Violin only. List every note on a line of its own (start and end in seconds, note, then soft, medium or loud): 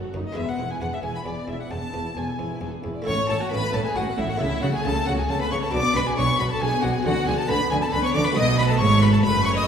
0.27 0.38 D#5 medium
0.36 0.50 E5 medium
0.48 0.72 F#5 medium
0.71 0.80 G#5 medium
0.81 0.85 F#5 medium
0.93 0.98 E5 medium
1.03 1.14 G#5 medium
1.15 1.20 B5 medium
1.25 1.50 D5 medium
1.48 1.62 E5 medium
1.60 1.72 F#5 medium
1.70 2.19 A5 medium
2.17 2.62 G#5 medium
3.07 3.28 C#6 loud
3.29 3.42 A5 medium
3.40 3.51 F#5 medium
3.52 3.76 B5 medium
3.74 3.85 A5 medium
3.85 3.97 G#5 medium
3.96 4.20 F#5 medium
4.18 4.31 E5 medium
4.30 4.42 F#5 medium
4.40 4.64 E5 medium
4.62 4.74 F#5 medium
4.74 4.85 G#5 medium
4.86 5.07 A5 medium
5.08 5.12 F#5 medium
5.19 5.32 G#5 medium
5.30 5.40 A5 medium
5.41 5.51 B5 medium
5.52 5.56 C#6 medium
5.63 5.73 A5 medium
5.74 5.98 D6 loud
5.97 6.08 B5 medium
6.07 6.17 G#5 medium
6.18 6.39 C#6 loud
6.40 6.44 B5 medium
6.51 6.63 A5 medium
6.61 6.85 G#5 medium
6.84 6.94 F#5 medium
6.95 7.08 G#5 medium
7.06 7.27 F#5 loud
7.28 7.38 G#5 medium
7.38 7.50 A5 medium
7.48 7.70 B5 loud
7.71 7.75 G#5 loud
7.82 7.86 A5 medium
7.92 8.03 B5 loud
8.04 8.13 C#6 medium
8.14 8.26 D6 loud
8.24 8.37 B5 loud
8.36 8.57 D#6 loud
8.58 8.68 B5 loud
8.69 8.79 A5 medium
8.79 9.03 C#6 loud
9.02 9.12 B5 medium
9.13 9.17 A5 loud
9.23 9.45 B5 loud
9.46 9.50 C#6 loud
9.57 9.66 D#6 loud